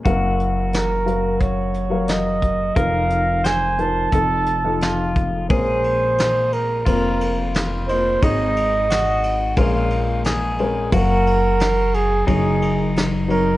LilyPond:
<<
  \new Staff \with { instrumentName = "Flugelhorn" } { \time 4/4 \key bes \minor \tempo 4 = 88 r4 bes'4 des''4 ees''4 | f''4 aes''8 a''2 r8 | c''4. bes'8 bes'4 r8 c''8 | ees''2 r2 |
bes'4. aes'8 aes'4 r8 bes'8 | }
  \new Staff \with { instrumentName = "Pedal steel guitar" } { \time 4/4 \key bes \minor ges'1 | bes'4 c''4 a'4 f'4 | aes'2 f'2 | ees'4 ges'4 f'4 aes'4 |
ges'2 ees'2 | }
  \new Staff \with { instrumentName = "Upright piano" } { \time 4/4 \key bes \minor <ges bes' f''>4 r8 <ges bes' f''>8. r8 <ges bes' f''>8. r8 | <f ees' bes'>4 r8 <f ees' bes'>8 <f ees' a'>8 r16 <f ees' a'>8. r8 | <aes des' bes'>4~ <aes des' bes'>16 r8. <bes f' c''>4~ <bes f' c''>16 r16 <bes f' ees''>16 r16 | <aes ees' des''>4~ <aes ees' des''>16 r8. <aes des' bes'>4~ <aes des' bes'>16 r16 <aes des' bes'>16 r16 |
<ges bes' f''>4~ <ges bes' f''>16 r8. <ges ees' des''>4~ <ges ees' des''>16 r16 <ges ees' des''>16 r16 | }
  \new Staff \with { instrumentName = "Upright piano" } { \clef bass \time 4/4 \key bes \minor <ges,, ges,>1 | <f,, f,>2 <f,, f,>2 | <bes,, bes,>2 <f,, f,>2 | <aes,, aes,>2 <bes,, bes,>2 |
<ges,, ges,>2 <ges,, ges,>2 | }
  \new Staff \with { instrumentName = "Upright bass" } { \clef bass \time 4/4 \key bes \minor ges,,1 | f,,2 f,,2 | bes,,2 f,,2 | aes,,2 bes,,2 |
ges,,2 ges,,2 | }
  \new DrumStaff \with { instrumentName = "Drums" } \drummode { \time 4/4 <hh bd>8 hh8 <hh sn>8 hh8 <hh bd>8 hh8 <hh sn>8 <hh bd>8 | <hh bd>8 hh8 <hh sn>8 hh8 <hh bd>8 hh8 <hh sn>8 <hh bd>8 | <bd cymr>8 cymr8 <cymr sn>8 cymr8 <bd cymr>8 cymr8 <cymr sn>8 cymr8 | <bd cymr>8 cymr8 <cymr sn>8 cymr8 <bd cymr>8 cymr8 <cymr sn>8 cymr8 |
<bd cymr>8 cymr8 <cymr sn>8 cymr8 <bd cymr>8 cymr8 <cymr sn>8 cymr8 | }
>>